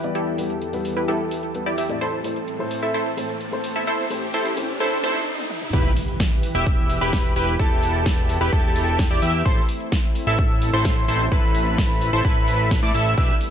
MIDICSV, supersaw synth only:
0, 0, Header, 1, 2, 480
1, 0, Start_track
1, 0, Key_signature, 0, "minor"
1, 0, Tempo, 465116
1, 158, Time_signature, 4, 2, 24, 8
1, 13935, End_track
2, 0, Start_track
2, 0, Title_t, "Supersaw synth"
2, 0, Program_c, 0, 81
2, 156, Note_on_c, 0, 64, 89
2, 157, Note_on_c, 0, 67, 84
2, 157, Note_on_c, 0, 69, 98
2, 968, Note_off_c, 0, 64, 0
2, 969, Note_off_c, 0, 67, 0
2, 969, Note_off_c, 0, 69, 0
2, 996, Note_on_c, 0, 71, 84
2, 997, Note_on_c, 0, 64, 72
2, 997, Note_on_c, 0, 67, 68
2, 1099, Note_off_c, 0, 64, 0
2, 1099, Note_off_c, 0, 67, 0
2, 1099, Note_off_c, 0, 71, 0
2, 1117, Note_on_c, 0, 64, 102
2, 1117, Note_on_c, 0, 67, 94
2, 1117, Note_on_c, 0, 69, 108
2, 1689, Note_off_c, 0, 64, 0
2, 1689, Note_off_c, 0, 67, 0
2, 1689, Note_off_c, 0, 69, 0
2, 1716, Note_on_c, 0, 64, 90
2, 1716, Note_on_c, 0, 67, 83
2, 1716, Note_on_c, 0, 74, 101
2, 1819, Note_off_c, 0, 64, 0
2, 1819, Note_off_c, 0, 67, 0
2, 1819, Note_off_c, 0, 74, 0
2, 1838, Note_on_c, 0, 64, 80
2, 1838, Note_on_c, 0, 67, 76
2, 1838, Note_on_c, 0, 76, 94
2, 2049, Note_off_c, 0, 64, 0
2, 2049, Note_off_c, 0, 67, 0
2, 2049, Note_off_c, 0, 76, 0
2, 2077, Note_on_c, 0, 72, 95
2, 2078, Note_on_c, 0, 64, 83
2, 2078, Note_on_c, 0, 69, 77
2, 2257, Note_off_c, 0, 64, 0
2, 2257, Note_off_c, 0, 69, 0
2, 2257, Note_off_c, 0, 72, 0
2, 2916, Note_on_c, 0, 64, 70
2, 2916, Note_on_c, 0, 69, 65
2, 2916, Note_on_c, 0, 76, 77
2, 3018, Note_off_c, 0, 64, 0
2, 3018, Note_off_c, 0, 69, 0
2, 3018, Note_off_c, 0, 76, 0
2, 3037, Note_on_c, 0, 69, 82
2, 3037, Note_on_c, 0, 72, 96
2, 3038, Note_on_c, 0, 64, 92
2, 3217, Note_off_c, 0, 64, 0
2, 3217, Note_off_c, 0, 69, 0
2, 3217, Note_off_c, 0, 72, 0
2, 3876, Note_on_c, 0, 64, 71
2, 3876, Note_on_c, 0, 69, 65
2, 3877, Note_on_c, 0, 76, 78
2, 3978, Note_off_c, 0, 64, 0
2, 3978, Note_off_c, 0, 69, 0
2, 3978, Note_off_c, 0, 76, 0
2, 3997, Note_on_c, 0, 64, 90
2, 3997, Note_on_c, 0, 69, 84
2, 3997, Note_on_c, 0, 72, 99
2, 4177, Note_off_c, 0, 64, 0
2, 4177, Note_off_c, 0, 69, 0
2, 4177, Note_off_c, 0, 72, 0
2, 4477, Note_on_c, 0, 72, 100
2, 4478, Note_on_c, 0, 64, 90
2, 4478, Note_on_c, 0, 69, 81
2, 4657, Note_off_c, 0, 69, 0
2, 4657, Note_off_c, 0, 72, 0
2, 4658, Note_off_c, 0, 64, 0
2, 4956, Note_on_c, 0, 64, 96
2, 4956, Note_on_c, 0, 69, 87
2, 4957, Note_on_c, 0, 72, 104
2, 5137, Note_off_c, 0, 64, 0
2, 5137, Note_off_c, 0, 69, 0
2, 5137, Note_off_c, 0, 72, 0
2, 5197, Note_on_c, 0, 64, 95
2, 5197, Note_on_c, 0, 69, 83
2, 5197, Note_on_c, 0, 72, 101
2, 5377, Note_off_c, 0, 64, 0
2, 5377, Note_off_c, 0, 69, 0
2, 5377, Note_off_c, 0, 72, 0
2, 5919, Note_on_c, 0, 64, 91
2, 5919, Note_on_c, 0, 67, 85
2, 5919, Note_on_c, 0, 71, 102
2, 6098, Note_off_c, 0, 64, 0
2, 6098, Note_off_c, 0, 67, 0
2, 6098, Note_off_c, 0, 71, 0
2, 6758, Note_on_c, 0, 64, 78
2, 6758, Note_on_c, 0, 67, 71
2, 6758, Note_on_c, 0, 76, 86
2, 7209, Note_off_c, 0, 64, 0
2, 7209, Note_off_c, 0, 67, 0
2, 7209, Note_off_c, 0, 76, 0
2, 7238, Note_on_c, 0, 64, 89
2, 7238, Note_on_c, 0, 71, 97
2, 7239, Note_on_c, 0, 67, 83
2, 7569, Note_off_c, 0, 71, 0
2, 7570, Note_off_c, 0, 64, 0
2, 7570, Note_off_c, 0, 67, 0
2, 7598, Note_on_c, 0, 67, 76
2, 7598, Note_on_c, 0, 71, 92
2, 7599, Note_on_c, 0, 64, 84
2, 7777, Note_off_c, 0, 67, 0
2, 7777, Note_off_c, 0, 71, 0
2, 7778, Note_off_c, 0, 64, 0
2, 7837, Note_on_c, 0, 64, 94
2, 7838, Note_on_c, 0, 67, 82
2, 7838, Note_on_c, 0, 69, 103
2, 8649, Note_off_c, 0, 64, 0
2, 8649, Note_off_c, 0, 67, 0
2, 8649, Note_off_c, 0, 69, 0
2, 8677, Note_on_c, 0, 71, 86
2, 8678, Note_on_c, 0, 64, 78
2, 8678, Note_on_c, 0, 67, 71
2, 8780, Note_off_c, 0, 64, 0
2, 8780, Note_off_c, 0, 67, 0
2, 8780, Note_off_c, 0, 71, 0
2, 8798, Note_on_c, 0, 64, 104
2, 8798, Note_on_c, 0, 67, 96
2, 8798, Note_on_c, 0, 69, 115
2, 9369, Note_off_c, 0, 64, 0
2, 9369, Note_off_c, 0, 67, 0
2, 9369, Note_off_c, 0, 69, 0
2, 9398, Note_on_c, 0, 64, 92
2, 9398, Note_on_c, 0, 67, 85
2, 9398, Note_on_c, 0, 74, 104
2, 9500, Note_off_c, 0, 64, 0
2, 9500, Note_off_c, 0, 67, 0
2, 9500, Note_off_c, 0, 74, 0
2, 9516, Note_on_c, 0, 76, 95
2, 9517, Note_on_c, 0, 64, 84
2, 9517, Note_on_c, 0, 67, 74
2, 9728, Note_off_c, 0, 76, 0
2, 9729, Note_off_c, 0, 64, 0
2, 9729, Note_off_c, 0, 67, 0
2, 9757, Note_on_c, 0, 64, 88
2, 9757, Note_on_c, 0, 69, 83
2, 9757, Note_on_c, 0, 72, 102
2, 9937, Note_off_c, 0, 64, 0
2, 9937, Note_off_c, 0, 69, 0
2, 9937, Note_off_c, 0, 72, 0
2, 10599, Note_on_c, 0, 64, 78
2, 10599, Note_on_c, 0, 69, 69
2, 10599, Note_on_c, 0, 76, 82
2, 11050, Note_off_c, 0, 64, 0
2, 11050, Note_off_c, 0, 69, 0
2, 11050, Note_off_c, 0, 76, 0
2, 11079, Note_on_c, 0, 64, 91
2, 11079, Note_on_c, 0, 69, 84
2, 11079, Note_on_c, 0, 72, 96
2, 11410, Note_off_c, 0, 64, 0
2, 11410, Note_off_c, 0, 69, 0
2, 11410, Note_off_c, 0, 72, 0
2, 11438, Note_on_c, 0, 64, 84
2, 11438, Note_on_c, 0, 69, 78
2, 11438, Note_on_c, 0, 72, 88
2, 11617, Note_off_c, 0, 64, 0
2, 11617, Note_off_c, 0, 69, 0
2, 11618, Note_off_c, 0, 72, 0
2, 11678, Note_on_c, 0, 69, 86
2, 11678, Note_on_c, 0, 71, 102
2, 11679, Note_on_c, 0, 64, 92
2, 12489, Note_off_c, 0, 64, 0
2, 12489, Note_off_c, 0, 69, 0
2, 12489, Note_off_c, 0, 71, 0
2, 12519, Note_on_c, 0, 64, 76
2, 12519, Note_on_c, 0, 69, 69
2, 12519, Note_on_c, 0, 72, 86
2, 12621, Note_off_c, 0, 64, 0
2, 12621, Note_off_c, 0, 69, 0
2, 12621, Note_off_c, 0, 72, 0
2, 12638, Note_on_c, 0, 64, 102
2, 12639, Note_on_c, 0, 69, 95
2, 12639, Note_on_c, 0, 71, 115
2, 13210, Note_off_c, 0, 64, 0
2, 13210, Note_off_c, 0, 69, 0
2, 13210, Note_off_c, 0, 71, 0
2, 13238, Note_on_c, 0, 74, 105
2, 13239, Note_on_c, 0, 64, 92
2, 13239, Note_on_c, 0, 69, 85
2, 13340, Note_off_c, 0, 64, 0
2, 13340, Note_off_c, 0, 69, 0
2, 13340, Note_off_c, 0, 74, 0
2, 13359, Note_on_c, 0, 64, 86
2, 13359, Note_on_c, 0, 76, 94
2, 13360, Note_on_c, 0, 69, 76
2, 13570, Note_off_c, 0, 64, 0
2, 13570, Note_off_c, 0, 69, 0
2, 13570, Note_off_c, 0, 76, 0
2, 13598, Note_on_c, 0, 62, 93
2, 13598, Note_on_c, 0, 64, 87
2, 13598, Note_on_c, 0, 67, 83
2, 13599, Note_on_c, 0, 71, 86
2, 13599, Note_on_c, 0, 76, 103
2, 13777, Note_off_c, 0, 67, 0
2, 13778, Note_off_c, 0, 62, 0
2, 13778, Note_off_c, 0, 64, 0
2, 13778, Note_off_c, 0, 71, 0
2, 13778, Note_off_c, 0, 76, 0
2, 13935, End_track
0, 0, End_of_file